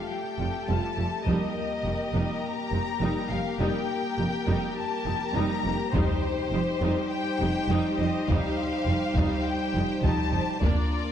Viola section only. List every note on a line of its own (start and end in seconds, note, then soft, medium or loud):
0.39 0.48 G3 soft
0.39 0.47 F4 soft
0.68 0.95 G3 soft
0.68 0.95 F4 soft
0.98 1.06 G3 soft
0.98 1.06 F4 soft
1.27 1.54 G3 medium
1.27 1.54 D#4 soft
1.85 1.94 G3 soft
1.85 1.93 D#4 soft
2.14 2.41 G3 soft
2.14 2.41 D#4 soft
2.73 2.81 G3 soft
2.73 2.82 D#4 soft
3.02 3.28 G3 medium
3.02 3.29 D#4 medium
3.29 3.37 G3 soft
3.29 3.38 D#4 soft
3.60 3.87 G3 medium
3.60 3.87 D#4 medium
4.18 4.26 G3 soft
4.18 4.26 D#4 soft
4.47 4.74 G3 medium
4.47 4.75 D#4 medium
5.05 5.14 G3 soft
5.05 5.13 D#4 soft
5.36 5.63 G3 medium
5.36 5.63 D#4 medium
5.65 5.73 G3 soft
5.65 5.74 D#4 soft
5.94 6.21 G3 medium
5.94 6.22 D#4 medium
6.53 6.61 G3 soft
6.53 6.61 D#4 soft
6.82 7.09 G3 medium
6.82 7.09 D#4 medium
7.41 7.49 G3 soft
7.41 7.49 D#4 soft
7.71 7.98 G3 medium
7.71 7.98 D#4 medium
8.00 8.08 G3 soft
8.00 8.08 D#4 soft
8.30 8.56 G3 medium
8.30 8.56 D#4 medium
8.88 8.96 G3 soft
8.88 8.97 D#4 soft
9.17 9.44 G3 medium
9.17 9.44 D#4 medium
9.76 9.85 G3 soft
9.76 9.84 D#4 medium
10.04 10.31 G3 medium
10.04 10.31 D#4 medium
10.33 10.41 G3 soft
10.33 10.41 D#4 soft
10.63 10.90 A#3 medium
10.63 10.90 D4 medium